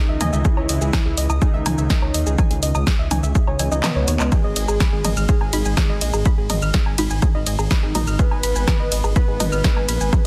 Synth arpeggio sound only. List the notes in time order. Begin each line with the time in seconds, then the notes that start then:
0.09 E5
0.21 G#5
0.33 E5
0.45 G#4
0.57 C#5
0.69 D#5
0.81 G#4
0.93 G#5
1.06 G#4
1.18 D#5
1.30 D#6
1.42 G#4
1.54 E5
1.66 G#5
1.78 E5
1.90 G#4
2.02 C#5
2.14 D#5
2.26 G#4
2.38 G#5
2.51 G#4
2.63 D#5
2.75 D#6
2.87 G#4
2.99 E5
3.11 G#5
3.23 E5
3.35 G#4
3.47 C#5
3.59 G#5
3.72 D#5
3.84 D#5
3.96 C#5
4.08 C#5
4.20 D#5
4.32 G#4
4.44 D#5
4.56 D#5
4.69 G#4
4.81 B5
4.93 G#4
5.05 D#5
5.17 F6
5.29 G#4
5.41 G#5
5.53 B5
5.66 G#5
5.77 G#4
5.90 D#5
6.02 D#5
6.14 G#4
6.26 B5
6.38 G#4
6.50 D#5
6.62 F6
6.74 G#4
6.86 G#5
6.98 B5
7.11 G#5
7.23 G#4
7.35 D#5
7.47 D#5
7.59 G#4
7.71 B5
7.83 G#4
7.95 D#5
8.07 F6
8.19 G#4
8.32 G#5
8.43 B5
8.56 G#5
8.68 G#4
8.80 D#5
8.92 D#5
9.04 G#4
9.16 B5
9.28 G#4
9.40 D#5
9.52 F6
9.64 G#4
9.76 G#5
9.88 B5
10.01 G#5
10.13 G#4